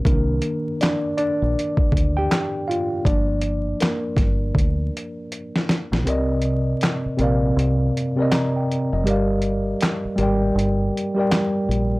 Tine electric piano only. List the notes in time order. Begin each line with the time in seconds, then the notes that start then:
0.05 D#3 A#3 D4 A#4
0.81 D4 D5
1.18 D4 D5
2.17 G4 G5
2.68 F4 F5
3.05 F3 A#3 D4 D5
3.81 A#3 A#4
6.04 C3 C4 A#4
6.09 D5 D#5
7.17 C3 C4 A#4
7.22 D5 F5
8.16 C3 C4 A#4
8.20 D5 D#5
8.33 A#5
8.56 G5
8.93 D#5
9.04 G3 G4 A#4
9.09 D5 F5
10.16 G3 G4 A#4
10.21 D5 G5
11.14 G3 G4 A#4
11.19 D5 G5